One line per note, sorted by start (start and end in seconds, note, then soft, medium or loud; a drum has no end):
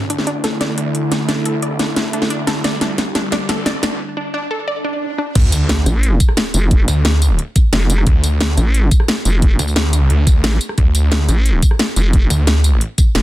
0.00 0.43 D2 loud
0.00 3.96 D3 medium
0.00 2.61 A3 medium
0.00 3.96 E4 medium
0.10 0.22 D4 medium
0.10 closed hi-hat medium
0.18 snare soft
0.27 0.43 D4 loud
0.27 closed hi-hat medium
0.44 0.76 E1 medium
0.44 0.55 A4 medium
0.44 snare soft
0.44 closed hi-hat medium
0.61 0.72 D5 medium
0.61 snare medium
0.61 closed hi-hat medium
0.78 2.12 D2 loud
0.78 0.94 D4 medium
0.78 closed hi-hat loud
0.95 closed hi-hat medium
1.12 1.23 D4 medium
1.12 snare medium
1.12 closed hi-hat medium
1.29 1.45 D4 loud
1.29 snare medium
1.29 closed hi-hat medium
1.45 1.57 A4 medium
1.45 closed hi-hat medium
1.62 1.74 D5 medium
1.62 closed hi-hat medium
1.79 1.96 D4 medium
1.79 snare medium
1.79 closed hi-hat medium
1.96 snare medium
1.96 closed hi-hat medium
2.13 2.29 D2 loud
2.13 2.25 D4 medium
2.13 closed hi-hat medium
2.22 snare medium
2.30 2.63 E1 medium
2.30 2.46 D4 loud
2.30 closed hi-hat medium
2.47 2.59 A4 medium
2.47 snare medium
2.47 closed hi-hat medium
2.64 3.14 D2 medium
2.64 3.99 G3 medium
2.64 2.76 D5 medium
2.64 snare medium
2.64 closed hi-hat medium
2.81 2.97 D4 medium
2.81 snare medium
2.81 closed hi-hat medium
2.98 snare medium
2.98 closed hi-hat medium
3.15 3.27 D4 medium
3.15 snare medium
3.15 closed hi-hat medium
3.32 3.48 D4 loud
3.32 snare medium
3.32 closed hi-hat medium
3.49 3.98 D2 loud
3.49 3.61 A4 medium
3.49 snare medium
3.49 closed hi-hat medium
3.66 3.78 D5 medium
3.66 snare medium
3.66 closed hi-hat medium
3.83 3.99 D4 medium
3.83 snare medium
3.83 closed hi-hat medium
4.17 4.28 D4 medium
4.34 4.50 D4 loud
4.51 4.62 A4 medium
4.68 4.79 D5 medium
4.68 swell medium
4.84 5.01 D4 medium
5.18 5.30 D4 medium
5.35 5.85 D2 loud
5.35 kick loud
5.35 closed hi-hat medium
5.35 crash loud
5.35 sub drop medium
5.52 closed hi-hat loud
5.52 tambourine medium
5.69 snare loud
5.69 closed hi-hat medium
5.86 6.19 A1 loud
5.86 cross-stick soft
5.86 closed hi-hat loud
5.86 tambourine medium
6.03 closed hi-hat medium
6.20 kick loud
6.20 closed hi-hat loud
6.20 tambourine medium
6.29 cross-stick medium
6.37 snare loud
6.37 closed hi-hat medium
6.54 6.87 F1 loud
6.54 closed hi-hat loud
6.54 tambourine medium
6.71 kick loud
6.71 closed hi-hat medium
6.88 7.04 D2 loud
6.88 closed hi-hat medium
6.88 tambourine medium
7.05 7.37 D2 loud
7.05 snare loud
7.05 closed hi-hat medium
7.22 closed hi-hat medium
7.22 tambourine medium
7.39 closed hi-hat medium
7.56 kick loud
7.56 closed hi-hat medium
7.56 tambourine medium
7.73 8.05 F1 medium
7.73 snare loud
7.73 closed hi-hat medium
7.81 cross-stick soft
7.90 closed hi-hat medium
7.90 tambourine medium
7.98 cross-stick medium
8.07 8.56 D2 loud
8.07 kick loud
8.07 closed hi-hat medium
8.24 closed hi-hat medium
8.24 tambourine medium
8.41 snare loud
8.41 closed hi-hat medium
8.57 8.90 A1 medium
8.57 cross-stick soft
8.57 closed hi-hat medium
8.57 tambourine medium
8.74 closed hi-hat medium
8.91 kick loud
8.91 closed hi-hat medium
8.91 tambourine medium
9.00 cross-stick medium
9.08 snare loud
9.08 closed hi-hat medium
9.25 9.58 F1 loud
9.25 closed hi-hat medium
9.25 tambourine medium
9.42 kick loud
9.42 closed hi-hat medium
9.59 9.75 D2 loud
9.59 closed hi-hat medium
9.59 tambourine medium
9.68 tambourine soft
9.76 snare loud
9.76 closed hi-hat medium
9.93 closed hi-hat medium
9.93 tambourine medium
10.10 10.43 D2 medium
10.10 closed hi-hat medium
10.27 kick loud
10.27 closed hi-hat medium
10.27 tambourine medium
10.44 10.59 A1 loud
10.44 snare loud
10.44 closed hi-hat medium
10.44 tambourine soft
10.52 cross-stick soft
10.61 closed hi-hat medium
10.61 tambourine medium
10.69 cross-stick soft
10.78 11.27 D2 loud
10.78 kick loud
10.78 closed hi-hat medium
10.95 closed hi-hat medium
10.95 tambourine medium
11.12 snare loud
11.12 closed hi-hat medium
11.29 11.61 A1 medium
11.29 cross-stick soft
11.29 closed hi-hat medium
11.29 tambourine medium
11.46 closed hi-hat medium
11.62 kick loud
11.62 closed hi-hat medium
11.62 tambourine medium
11.71 cross-stick soft
11.79 snare loud
11.79 closed hi-hat medium
11.96 12.29 F1 loud
11.96 closed hi-hat medium
11.96 tambourine medium
12.13 kick loud
12.13 closed hi-hat medium
12.30 12.46 D2 medium
12.30 closed hi-hat medium
12.30 tambourine medium
12.47 12.80 D2 loud
12.47 snare loud
12.47 closed hi-hat medium
12.64 closed hi-hat medium
12.64 tambourine medium
12.81 closed hi-hat medium
12.98 kick loud
12.98 closed hi-hat medium
12.98 tambourine medium
13.15 13.22 F1 loud
13.15 snare loud
13.15 closed hi-hat medium